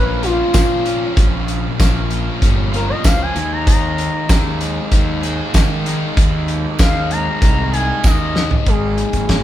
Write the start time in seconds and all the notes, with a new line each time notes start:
Already playing: A#1 A#2 F3 A#3 C#4 F4 B4
0.22 F3 A#3 C#4 F4, closed hi-hat
0.54 A#2 C5, kick, snare, closed hi-hat, tambourine
0.84 F3 A#3 C#4 F4, closed hi-hat
1.17 A#1 A#2, kick, closed hi-hat
1.48 closed hi-hat
1.78 A#1 F3 A#3 C#4 F4, kick, snare, closed hi-hat, tambourine
2.11 A#3, closed hi-hat
2.42 G1 C#4, kick, closed hi-hat
2.72 F3 A#3 C#4 F4 A#4, closed hi-hat
2.89 D#5
3.04 C#2 C5 F5, kick, snare, closed hi-hat, tambourine
3.22 G#5
3.34 D#2 D#3 A#3 D#4 G#4, closed hi-hat
3.52 A#5
3.67 D#3 A#5, kick, closed hi-hat
3.98 closed hi-hat
4.28 D#2 A#3 D#4 G#4, kick, snare, closed hi-hat, tambourine
4.61 G#3, closed hi-hat
4.91 D#2 D#4, kick, closed hi-hat
5.21 A#3 D#4 G#4, closed hi-hat
5.54 D#3 A#4, kick, snare, closed hi-hat, tambourine
5.85 A#3 D#4 G#4, snare, closed hi-hat
6.17 D#2 D#3, kick, closed hi-hat
6.48 closed hi-hat
6.78 D#2 A#3 D#4 G#4 F5, kick, snare, closed hi-hat, tambourine
7.11 G#3 A#5, closed hi-hat
7.41 C2 D#4 A#5, kick, closed hi-hat
7.72 A#3 D#4 G#4 G#5, closed hi-hat
8.04 D#2 A#4 D#5, kick, snare, tambourine
8.36 D#4, snare
8.51 floor tom
8.66 G#1 D#3 G#3 A#3 D#4 G#4, kick, closed hi-hat
8.97 D#3 A#3, closed hi-hat
9.13 G#1, kick, closed hi-hat
9.28 G#1 D#3 A#3, kick, snare, closed hi-hat